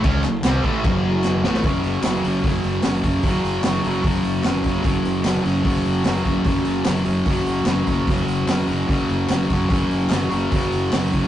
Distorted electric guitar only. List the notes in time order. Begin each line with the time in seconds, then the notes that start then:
0.04 C#3 G#3 C#4
0.25 F#2 C#3
0.44 C3 G3 C4
0.64 A2 E3 A3
0.84 F#2 C#3 F#3
1.44 A2 E3 A3
1.62 F#2 C#3
1.67 F#3
2.03 F#2 C#3
2.07 F#3
2.22 F#3
2.27 C#3
2.43 F#2 C#3
2.48 F#3
2.83 F#2 C#3
2.88 F#3
3.04 F#3
3.08 C#3
3.24 F#2 C#3
3.29 F#3
3.64 F#2 C#3
3.68 F#3
3.83 F#3
3.87 C#3
4.03 F#2 C#3
4.07 F#3
4.43 F#2 C#3
4.47 F#3
4.64 F#3
4.68 C#3
4.83 F#2 C#3
4.87 F#3
5.23 F#2 C#3
5.28 F#3
5.43 F#3
5.47 C#3
5.63 F#2 C#3 F#3
6.04 F#2 C#3
6.09 F#3
6.24 F#3
6.28 C#3
6.44 F#2 C#3
6.49 F#3
6.85 F#2 C#3
6.89 F#3
7.06 F#3
7.11 C#3
7.26 F#2 C#3
7.31 F#3
7.67 F#2 C#3
7.72 F#3
7.87 F#3
7.92 C#3
8.08 F#2 C#3
8.13 F#3
8.47 F#2 C#3
8.51 F#3
8.68 F#3
8.73 C#3
8.87 F#2 C#3
8.93 F#3
9.28 F#2 C#3
9.33 F#3
9.49 F#3
9.53 C#3
9.69 F#2 C#3
9.74 F#3
10.11 F#2 C#3
10.16 F#3
10.30 F#3
10.35 C#3
10.51 F#2 C#3
10.56 F#3
10.93 F#2 C#3
10.97 F#3
11.12 F#3
11.17 C#3